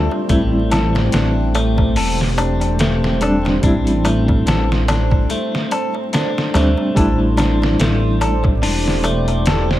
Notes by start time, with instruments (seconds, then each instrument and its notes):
Already playing: reed electric piano G3 A3 D4 F4, ambient pad A3 G4 C5 D5 E5, synth drone C4, clean electric guitar A4
0.11 darbuka tek
0.27 detuned saw bass A1, reed electric piano G3 C4, clean electric guitar A3, ambient pad G4 C5, kick, closed hi-hat, darbuka tek
0.32 reed electric piano E4
0.71 clean electric guitar A4, snare, closed hi-hat, darbuka tek
0.95 snare, darbuka tek
1.12 detuned saw bass A1, clean electric guitar D4, snare, closed hi-hat, darbuka tek
1.55 clean electric guitar A3, closed hi-hat, darbuka tek
1.78 kick, darbuka tek
1.96 detuned saw bass E1, clean electric guitar A4, open hi-hat, darbuka tek
2.21 snare
2.38 clean electric guitar D4, closed hi-hat, darbuka tek
2.61 closed hi-hat, darbuka tek
2.79 clean electric guitar A3, snare, closed hi-hat, darbuka tek
3.04 snare
3.21 reed electric piano G3 C4 D4, clean electric guitar A4, closed hi-hat, darbuka tek
3.45 snare, darbuka tek
3.61 detuned saw bass A1, reed electric piano G3 C4, clean electric guitar D4, ambient pad A4, kick, closed hi-hat, darbuka tek
3.66 reed electric piano E4
3.87 closed hi-hat
4.05 clean electric guitar A3, closed hi-hat, darbuka tek
4.28 kick, darbuka tek
4.46 detuned saw bass A1, clean electric guitar A4, snare, closed hi-hat, darbuka tek
4.72 snare
4.88 clean electric guitar D4, snare, closed hi-hat, darbuka tek
5.11 kick, darbuka tek
5.29 clean electric guitar A3, closed hi-hat, darbuka tek
5.55 snare
5.71 clean electric guitar A4, closed hi-hat, darbuka tek
5.95 darbuka tek
6.13 clean electric guitar D4, snare, closed hi-hat, darbuka tek
6.38 snare
6.54 detuned saw bass D2, reed electric piano G3 C4 D4, clean electric guitar A3, snare, closed hi-hat, darbuka tek
6.78 darbuka tek
6.95 detuned saw bass A1, reed electric piano G3 A3 D4, ambient pad A3 E4 G4 D5, clean electric guitar A4, kick, closed hi-hat, darbuka tek
6.99 reed electric piano E4
7.37 clean electric guitar D4, snare, closed hi-hat, darbuka tek
7.62 snare, darbuka tek
7.79 detuned saw bass A1, clean electric guitar A3, snare, closed hi-hat, darbuka tek
8.21 clean electric guitar A4, closed hi-hat, darbuka tek
8.44 kick, darbuka tek
8.62 detuned saw bass E1, clean electric guitar D4, open hi-hat, darbuka tek
8.88 snare
9.04 clean electric guitar A3, closed hi-hat, darbuka tek
9.28 closed hi-hat, darbuka tek
9.46 clean electric guitar A4, snare, closed hi-hat, darbuka tek
9.71 snare